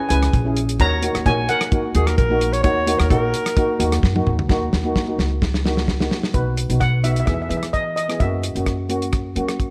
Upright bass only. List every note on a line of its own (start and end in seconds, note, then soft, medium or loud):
0.10 0.31 C#2 medium
0.33 0.76 A#1 medium
0.80 1.12 D#2 medium
1.15 1.25 D#2 medium
1.26 1.47 A#1 medium
1.95 2.16 D#2 loud
2.18 2.60 A#1 medium
2.64 2.96 D#2 loud
3.00 3.10 D#2 medium
3.10 3.31 A#1 loud
3.80 4.01 D#2 loud
4.03 4.24 F#2 medium
4.26 4.47 D#2 medium
4.49 4.70 D#2 loud
4.73 5.15 D#2 medium
5.18 6.07 C#2 medium
6.34 6.67 B1 medium
6.70 7.23 B1 medium
7.27 7.48 E2 medium
7.50 8.16 E3 medium
8.20 8.52 F#2 medium
8.55 9.32 F#2 medium
9.36 9.70 F#3 medium